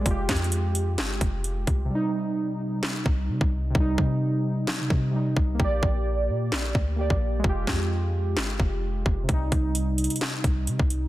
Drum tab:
HH |x-----------x---x---x---x-----------x-----------x-----------x-----------x-----------x-----------|------------------------------------------------------------------------------------------------|------------------------------------------------------------------------------------------------|------------------------------------------------------------------------------------------------|
CP |------------x-----------------------------------x-----------------------------------------------|------------------------------------------------x-----------------------------------------------|------------------------------------------------x-----------------------------------------------|------------------------------------------------x-----------------------------------------------|
SD |------------o-----------------------------------o-----------------------------------------------|------------------------------------------------o-----------------------------------------------|------------------------------------------------o-----------------------------------------------|------------------------------------------------o-----------------------------------------------|
BD |o-----------o-----------------------------------------------o-----------------------o-----------|------------------------------------------------------------o-----------------o-----------------|o-----------o-----------------------------------------------o-----------------------o-----------|o-----------o-----------------------------------------------o-----------------o-----------------|

HH |------------------------------------------------------------------------------------------------|x-----------x-----------x-----------x--x--x--x--x-----------x-----------x-----------x-----------|
CP |------------x-----------------------------------x-----------------------------------------------|------------------------------------------------x-----------------------------------------------|
SD |------------o-----------------------------------o-----------------------------------------------|------------------------------------------------o-----------------------------------------------|
BD |o-----------o-----------------------------------------------o-----------------------o-----------|o-----------o-----------------------------------------------o-----------------o-----------------|